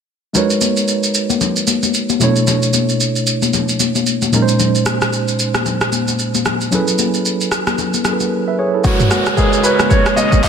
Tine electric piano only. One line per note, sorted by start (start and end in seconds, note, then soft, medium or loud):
0.33 2.16 G#3 medium
0.33 2.17 D#4 medium
0.33 2.17 F#4 medium
0.33 2.18 A#4 medium
0.33 2.18 B4 medium
0.38 2.18 C#5 medium
2.19 4.28 B2 medium
2.19 4.29 A3 medium
2.19 2.29 C#4 medium
2.19 4.30 E4 medium
2.24 4.31 C#5 medium
2.28 4.33 D4 medium
4.32 6.41 A#2 medium
4.32 6.41 G#3 medium
4.32 6.42 C#4 medium
4.32 6.42 D#4 medium
4.36 4.42 A#4 medium
4.42 6.46 C5 medium
6.71 8.01 F#3 medium
6.71 8.02 C#4 medium
6.71 8.02 E4 medium
6.71 8.03 G#4 medium
6.71 8.03 A4 medium
6.75 8.04 B4 medium
8.04 8.84 F#3 medium
8.04 8.85 C#4 medium
8.04 8.32 E4 soft
8.04 8.32 G#4 soft
8.04 8.32 A4 medium
8.04 8.13 A#4 soft
8.13 8.35 B4 medium
8.48 8.58 B4 medium
8.48 8.58 E5 medium
8.59 8.73 G#4 medium
8.59 8.73 C#5 medium
8.74 8.99 E4 medium
8.74 8.99 A4 medium
8.84 9.29 G#3 medium
8.84 9.29 F#4 medium
8.84 9.29 A#4 medium
8.84 9.29 B4 medium
8.84 9.30 C#5 medium
9.37 9.60 G#3 medium
9.37 9.60 F#4 medium
9.37 9.60 A#4 medium
9.37 9.60 B4 medium
9.37 9.61 C#5 medium
9.64 10.49 G#3 medium
9.64 10.49 F#4 medium
9.64 10.49 A#4 medium
9.64 10.49 B4 medium
9.64 10.49 C#5 medium